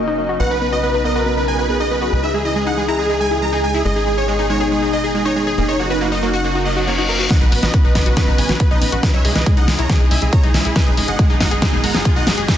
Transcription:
Already playing: F#1 C#3 F#3 A#3 D#4 D#5
0.08 D#4
0.18 A#3
0.29 F#4
0.40 B1 B3 B4 F#5
0.51 D#4 B4
0.61 B3 B4
0.72 F#4 D#5
0.83 B3 B4
0.94 D#4 B4
1.04 B3 A#4 D#5
1.15 F#4 B4
1.26 B3 B4
1.37 D#4 B4
1.48 B3 G#5
1.59 F#4 B4
1.69 B3 G#4 B4
1.80 D#4 D#5
1.91 B3 B4
2.02 F#4 B4
2.12 C#2 E3 G#3 B4
2.23 D#4 E5
2.34 G#3 G#4
2.45 E4 D#5
2.56 G#3 G#4
2.66 D#4 F#5
2.77 G#3 G#4
2.88 E4 A#5
2.99 G#3 G#4
3.10 D#4 G#4
3.20 G#3 G#5
3.31 E4 G#4
3.42 G#3 A#5
3.53 D#4 G#4
3.64 G#3 G#5
3.74 E4 G#4
3.85 G#1 B2 D#3 G#3 D#4 G#4 D#5
3.96 D#4 G#4
4.07 G#3 G#4
4.17 G#4 C#5
4.28 G#3 G#4
4.39 D#4 G#4
4.50 G#3 D#4 C#5
4.60 G#4
4.71 G#3 G#4
4.82 D#4 G#4
4.93 G#3 D#5
5.04 G#4
5.14 G#3 D#4 G#4
5.25 D#4 C#5
5.36 G#3 G#4
5.47 G#4
5.58 F#1 C#3 F#3 A#3 G#4
5.68 D#4 C#5
5.79 A#3 F#4
5.90 F#4 B4
6.01 A#3 F#4
6.12 D#4 D#5
6.22 A#3 F#4
6.33 F#4 F#5
6.44 A#3 F#4, reverse cymbal
6.55 D#4 F#4
6.65 A#3 D#5
6.76 F#4
6.87 A#3 C#5
6.98 D#4 F#4
7.09 A#3 A#4
7.20 F#4
7.30 C#3 F#3 B3 D#4 D#5 F#5, kick, snare, closed hi-hat, riser
7.41 B1 D#4 B4, closed hi-hat
7.52 B1 B3 B4, open hi-hat
7.63 B1 F#4 B4 D#5, snare, closed hi-hat
7.73 B3 B4, kick, closed hi-hat
7.84 B1 D#4 B4
7.95 B1 B3 B4 D#5, kick, snare, open hi-hat
8.06 B1 F#4 B4, closed hi-hat
8.17 B3 B4, kick, snare, closed hi-hat
8.27 B1 D#4 B4
8.38 B1 B3 B4 G#5, open hi-hat
8.49 B1 F#4 B4, snare, closed hi-hat
8.60 B3 B4, kick, closed hi-hat
8.71 B1 D#4 B4 D#5
8.81 B1 B3 B4, open hi-hat
8.92 B1 F#4 B4, closed hi-hat
9.03 E3 G#3 B4, kick, snare, closed hi-hat
9.14 C#2 D#4 C#5 E5, closed hi-hat
9.25 C#2 G#3 G#4, open hi-hat
9.35 C#2 E4 B4 D#5, snare, closed hi-hat
9.46 G#3 G#4, kick, closed hi-hat
9.57 C#2 D#4 D#5 F#5, closed hi-hat
9.68 C#2 G#3 G#4, snare, open hi-hat
9.79 C#2 E4 C#5 A#5, closed hi-hat
9.89 G#3 G#4, kick, snare, closed hi-hat
10.00 C#2 D#4 G#4
10.11 C#2 G#3 E5 G#5, open hi-hat
10.22 C#2 E4 G#4, closed hi-hat
10.33 G#3 C#5 A#5, kick, closed hi-hat
10.43 C#2 D#4 G#4, closed hi-hat
10.54 C#2 G#3 E5 G#5, snare, open hi-hat
10.65 C#2 E4 G#4, closed hi-hat
10.76 B2 D#3 G#3 D#4 B4 G#5, kick, snare, closed hi-hat
10.86 G#1 D#4 G#4, closed hi-hat
10.97 G#1 G#3 G#4, open hi-hat
11.08 G#1 G#4 D#5 F#5, closed hi-hat
11.19 G#3 G#4, kick, closed hi-hat
11.30 G#1 D#4 G#4
11.40 G#1 G#3 D#5 F#5, kick, snare, open hi-hat
11.51 G#1 G#4, closed hi-hat
11.62 G#3 G#4, kick, snare, closed hi-hat
11.73 G#1 D#4 G#4
11.83 G#1 G#3 F#5 A#5, open hi-hat
11.94 G#1 G#4, snare, closed hi-hat
12.05 G#3 G#4, kick, closed hi-hat
12.16 G#1 D#4 D#5 F#5
12.27 G#1 G#3 G#4, snare, open hi-hat
12.38 G#1 G#4, closed hi-hat
12.48 C#3 F#3 A#3 G#4, kick, snare, closed hi-hat

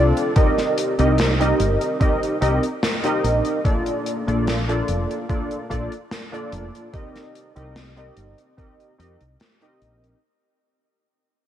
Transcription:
Already playing: C2 C4 D4 F4 A4 D5
0.17 closed hi-hat
0.36 C4 D#4 G4 A#4 D#5, kick, closed hi-hat
0.58 snare, closed hi-hat
0.78 closed hi-hat
0.98 C2 C4 D#4 G4 A#4 D#5, closed hi-hat
1.18 snare, closed hi-hat
1.40 C4 D#4 G4 A#4 D#5, closed hi-hat
1.60 G1, closed hi-hat
1.81 closed hi-hat
2.00 C4 D#4 G4 A#4 D#5, kick, closed hi-hat
2.23 closed hi-hat
2.41 C2 C4 D#4 G4 A#4 D#5, closed hi-hat
2.63 closed hi-hat
2.83 snare, closed hi-hat
3.04 C4 D#4 G4 A#4 D#5, closed hi-hat
3.24 A#1, closed hi-hat
3.45 closed hi-hat
3.64 A#3 D4 F4 A4 D5, kick, closed hi-hat
3.86 closed hi-hat
4.06 closed hi-hat
4.27 A#1 A#3 D4 F4 A4 D5, closed hi-hat
4.47 snare, closed hi-hat
4.68 A#3 D4 F4 A4 D5, closed hi-hat
4.88 F1, closed hi-hat
5.11 closed hi-hat
5.29 A#3 D4 F4 A4 D5, kick, closed hi-hat
5.51 closed hi-hat
5.70 A#1 A#3 D4 F4 A4 D5, kick, closed hi-hat
5.92 closed hi-hat
6.12 snare, closed hi-hat
6.32 A#3 D4 F4 A4 D5, closed hi-hat
6.53 F1, closed hi-hat
6.75 closed hi-hat
6.93 C4 D#4 G4 A#4 D#5, kick, closed hi-hat
7.16 snare, closed hi-hat
7.35 closed hi-hat
7.56 C2 C4 D#4 G4 A#4 D#5, closed hi-hat
7.76 snare, closed hi-hat
7.96 C4 D#4 G4 A#4 D#5, closed hi-hat
8.17 G1, closed hi-hat
8.38 closed hi-hat
8.57 C4 D#4 G4 A#4 D#5, kick, closed hi-hat
8.80 closed hi-hat
8.98 F2 C4 D#4 G4 A#4 D#5, closed hi-hat
9.21 C2, closed hi-hat
9.40 snare, closed hi-hat
9.61 C4 D#4 G4 A#4 D#5, closed hi-hat
9.82 A#1, closed hi-hat
10.04 closed hi-hat

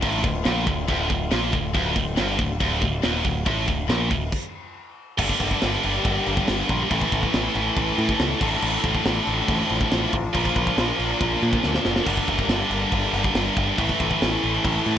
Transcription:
Already playing: D3 F3 A3 F4
0.01 A1 A2, kick, crash
0.23 D1 D2, kick, crash
0.44 A#1 A#2, snare, crash
0.66 D1 D2, kick, crash
0.88 D1 D2, kick, crash
1.09 D1 D2, kick, crash
1.31 A#1 A#2, snare, crash
1.52 D1 D2, kick, crash
1.73 D1 D2 G3, kick, crash
1.95 D1 D2, kick, crash
2.16 G1 G2, snare, crash
2.38 D1 D2, kick, crash
2.60 D1 D2, kick, crash
2.82 D1 D2, kick, crash
3.02 D#1 D#2, snare, crash
3.24 D1 D2, kick, crash
3.46 A1 A2, kick, crash
3.67 D1 D2, kick, crash
3.88 A#1 A#2, snare, crash
4.10 D1 D2, kick, crash
4.32 kick, crash
5.18 G1 G2 D3 G3 A#3 G4, kick, crash
5.26 G2 D3, kick
5.33 G2 D3
5.40 G1 G2 D3, kick, crash
5.50 G2 D3, kick
5.57 G2 D3
5.62 G1 G2 D3, snare, crash
5.73 G2 D3
5.81 G1 G2 D3, crash
5.88 G2 D3
5.97 G2 D3
6.03 G1 G2 D3, kick, crash
6.12 G2 D3
6.20 G2 D3
6.26 G1 G2 D3, crash
6.35 G2 D3, kick
6.42 G2 D3
6.48 G1 G2 D3, snare, crash
6.59 G2 D3
6.67 A#1 G2 D3, kick, crash
6.74 G2 D3
6.82 G2 D3
6.90 A1 A2 E3 A3 C#4 A4, kick, crash
6.94 E3 A3
6.98 A2, kick
7.05 A2 E3
7.12 A1 A2 E3, kick, crash
7.20 A2 E3, kick
7.28 A2 E3
7.34 A1 A2 E3, snare, crash
7.42 A2 E3
7.51 A2 E3
7.55 A1 E3, crash
7.61 A2
7.66 A2 E3
7.74 A1 A2 E3, kick, crash
7.81 A2 E3
7.88 E3
7.92 A2
7.97 A2 E3, crash
8.03 E3
8.08 A2 E3, kick
8.15 A2 E3
8.19 C#2 A2, snare, crash
8.26 E3
8.31 A2 E3
8.40 A1 D2 A2 D3 F3 D4, kick, crash
8.47 D2 A2
8.55 D2 A2
8.62 A1 D2 A2, crash
8.70 D2 A2
8.79 D2 A2
8.84 A1 D2 A2, kick, crash
8.95 D2 A2, kick
9.02 A1 D2 A2, snare, crash
9.10 D2 A2
9.18 D2 A2
9.27 A1 D2 A2, crash
9.33 D2 A2
9.41 D2 A2
9.48 A1 D2 A2, kick, crash
9.57 D2 A2
9.65 D2 A2
9.70 A1 D2, crash
9.74 A2
9.81 D2 A2, kick
9.89 A1 D2 A2, snare, crash
9.96 D2 A2
10.04 D2 A2
10.13 A1, kick, crash
10.33 A#1 A#2 F3 A#3 A#4, kick, crash
10.41 A#2 F3
10.45 A#2, kick
10.51 F3
10.56 A#1 A#2 F3, kick, crash
10.65 A#2 F3, kick
10.72 A#2 F3
10.77 A#1 A#2, snare, crash
10.82 F3
10.89 A#2 F3
10.96 A#1 A#2 F3, crash
11.04 A#2 F3
11.12 A#2 F3
11.19 A#1 A#2 F3, kick, crash
11.27 A#2 F3
11.35 A#2 F3
11.42 A#2 F3, crash
11.50 A#2 F3, kick
11.59 A#2 F3
11.63 D2 A#2 F3, snare
11.74 A#2 F3, snare
11.82 F#1 A#2 F3, snare
11.90 A#2 F3
11.96 A#2 F3, snare
12.05 G1 G2 D3 G3, kick, splash, crash
12.13 G2 D3, kick
12.21 G2 D3
12.28 G1 G2 D3, kick, crash
12.37 G2 D3, kick
12.45 G1 G2 D3
12.49 G2 D3, snare, crash
12.60 G2 D3
12.67 G1 G2 D3, crash
12.75 G2 D3
12.84 G2 D3
12.91 G1 G2 D3, kick, crash
12.99 G2 D3
13.07 G2 D3
13.13 G1 G2 D3, crash
13.23 G2 D3, kick
13.30 G2 D3
13.35 G1 G2 D3, snare, crash
13.46 G2 D3
13.54 G1 G2 D3, kick, crash
13.62 G2 D3
13.70 G2 D3
13.77 A1 A2 E3 A3 C#4 A4, kick, crash
13.81 A2 A3
13.86 E3, kick
13.93 A2 E3
14.00 A1 A2 E3, kick, crash
14.08 A2 E3, kick
14.15 A2 E3
14.22 A1 A2 E3, snare, crash
14.30 A2 E3
14.38 A2 E3
14.44 A1 E3, crash
14.48 A2
14.54 A2 E3
14.60 A2 E3
14.65 A1, kick, crash
14.69 A2 E3
14.76 A2 E3
14.83 A2 E3, crash
14.88 A2 E3

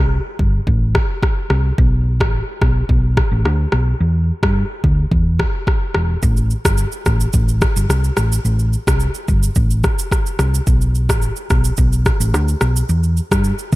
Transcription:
0.00 C2
0.39 G1, kick
0.67 A1, kick
0.95 kick, cross-stick
1.23 kick, cross-stick
1.50 C2, cross-stick
1.78 B1, kick
2.20 A1, kick, cross-stick
2.62 B1, kick, cross-stick
2.89 B1, kick
3.17 kick, cross-stick
3.32 A1
3.45 D2, cross-stick
3.72 B1, cross-stick
4.00 E2
4.43 G2, kick, cross-stick
4.84 D2, kick
5.11 E2, kick
5.39 kick, cross-stick
5.67 kick, cross-stick
5.95 E1, cross-stick
6.22 A1, kick, shaker
6.37 shaker
6.50 shaker
6.65 G1, kick, cross-stick, shaker
6.78 shaker
6.92 shaker
7.06 A1, kick, cross-stick, shaker
7.20 shaker
7.33 A1, kick, shaker
7.48 shaker
7.61 kick, cross-stick, shaker
7.76 G1, shaker
7.89 C2, cross-stick, shaker
8.04 shaker
8.17 A1, cross-stick, shaker
8.32 shaker
8.45 A1, shaker
8.59 shaker
8.73 shaker
8.87 C2, kick, cross-stick, shaker
9.00 shaker
9.14 shaker
9.28 G1, kick, shaker
9.43 shaker
9.55 A1, kick, shaker
9.70 shaker
9.84 kick, cross-stick, shaker
9.99 shaker
10.12 kick, cross-stick, shaker
10.26 shaker
10.39 C2, cross-stick, shaker
10.54 shaker
10.67 B1, kick, shaker
10.81 shaker
10.95 shaker
11.09 A1, kick, cross-stick, shaker
11.22 shaker
11.36 shaker
11.50 B1, kick, cross-stick, shaker
11.64 shaker
11.77 B1, kick, shaker
11.93 shaker
12.05 kick, cross-stick, shaker
12.20 A1, shaker
12.34 D2, cross-stick, shaker
12.48 shaker
12.61 B1, cross-stick, shaker
12.76 shaker
12.89 E2, shaker
13.03 shaker
13.17 shaker
13.31 G2, kick, cross-stick, shaker
13.44 shaker
13.59 shaker
13.72 D2, kick, shaker

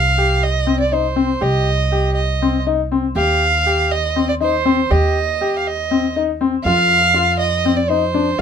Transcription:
Already playing: C2 F5
0.18 G4
0.43 D#5
0.67 C4
0.80 D5
0.92 D#4 C5
1.16 C4
1.41 C2 G4 D#5
1.92 G4
2.15 D#5
2.42 C4
2.66 D#4
2.92 C4
3.15 D#2 G4 F5
3.66 G4
3.91 D#5
4.16 C4
4.29 D5
4.40 D#4 C5
4.65 C4
4.90 D#2 G4 D#5
5.41 G4
5.58 F5
5.67 D#5
5.91 C4
6.16 D#4
6.41 C4
6.64 F2 F4 F5
7.14 F4
7.40 D#5
7.65 C4
7.76 D5
7.89 D#4 C5
8.14 D4

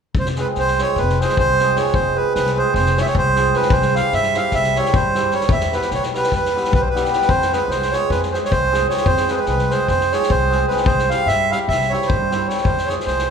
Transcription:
0.15 F1, kick
0.19 C5
0.26 snare
0.36 G#3 C4 F4 G#4, snare
0.40 B4
0.55 C2, snare
0.59 C5
0.67 snare
0.78 G#3 C4 F4 G#4 C#5, snare
0.96 F1 B4, kick, snare
1.09 snare
1.20 G#3 C4 F4 G#4 C5, snare
1.29 snare
1.37 C2 C5, kick
1.58 G#3 C4 F4 G#4, snare
1.76 G#3 C4 F4 G#4 C#5, snare
1.86 snare
1.94 F1 C5, kick
2.15 G#3 C4 F4 G#4 B4
2.35 C2 B4, snare
2.46 snare
2.55 G#3 C4 F4 G#4 C5
2.74 F1 C5, kick, snare
2.86 snare
2.97 G#3 C4 F4 G#4 C#5, snare
3.02 E5
3.06 C#5, snare
3.15 C2 C5, kick
3.36 G#3 C4 F4 G#4, snare
3.54 G#3 C4 F4 G#4 B4, snare
3.62 snare
3.70 C2 C5, kick
3.82 snare
3.93 G3 C4 E4 G4 F5, snare
4.12 G2 E5, snare
4.23 snare
4.34 G3 C4 E4 G4 F5, snare
4.51 C2 E5, kick, snare
4.64 snare
4.75 G3 C4 E4 G4 C#5, snare
4.85 snare
4.94 G2 C5, kick
5.15 G3 C4 E4 G4, snare
5.31 G3 C4 E4 G4 C#5, snare
5.41 snare
5.49 E2 E5, kick
5.60 snare
5.72 G3 B3 E4 G4 B4, snare
5.81 snare
5.91 B1 C#5, snare
6.03 snare
6.14 G3 B3 E4 G4 B4, snare
6.23 snare
6.32 E2 B4, kick, snare
6.45 snare
6.56 G3 B3 E4 G4, snare
6.65 snare
6.72 B1 B4, kick
6.81 C5
6.90 B4
6.94 G3 B3 E4 G4, snare
7.05 snare
7.10 G3 B3 E4 G4, snare
7.22 snare
7.28 F2 C5, kick
7.42 snare
7.52 G#3 C4 F4 G#4 B4, snare
7.68 C2 C5, snare
7.82 snare
7.92 G#3 C4 F4 G#4 C#5, snare
8.10 F2 B4, kick, snare
8.23 snare
8.32 G#3 C4 F4 G#4 C5, snare
8.45 C#5, snare
8.51 C2 C5, kick
8.72 G#3 C4 F4 G#4, snare
8.87 G#3 C4 F4 G#4 C#5, snare
8.97 snare
9.06 F2 C5, kick
9.17 snare
9.28 G#3 C4 F4 G#4 B4, snare
9.35 B4 C5
9.46 C2 B4, snare
9.58 snare
9.70 G#3 C4 F4 G#4 C5, snare
9.88 F2 C5, kick, snare
10.00 snare
10.12 G#3 C4 F4 G#4 C#5, snare
10.22 snare
10.30 C2 C5, kick
10.50 G#3 C4 F4 G#4, snare
10.68 G#3 C4 F4 G#4 B4, snare
10.77 snare
10.85 C2 C5, kick
10.99 snare
11.10 G3 C4 E4 G4 F5, snare
11.26 G2 E5, snare
11.51 G3 C4 E4 G4 F5, snare
11.68 C2 E5, kick, snare
11.82 snare
11.89 G3 C4 E4 G4 C#5, snare
12.02 snare
12.07 G2 C5, kick
12.30 G3 C4 E4 G4, snare
12.47 G3 C4 E4 G4 C#5, snare
12.57 snare
12.65 F2 C5, kick
12.78 snare
12.86 G#3 C4 F4 G#4 C#5, snare
13.00 snare
13.06 C2 C5, snare
13.19 snare

